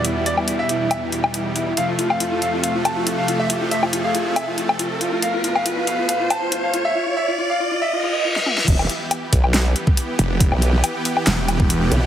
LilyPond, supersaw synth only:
\new Staff \with { instrumentName = "Supersaw synth" } { \clef bass \time 4/4 \key e \phrygian \tempo 4 = 139 << { <e, g>1 | <f, a>1~ | <f, a>1~ | <f, a>1 |
r1 | <e g'>1~ | <e g'>1 | } \\ { b,1 | c1~ | c1 | b,1 |
r1 | b1~ | b1 | } >> }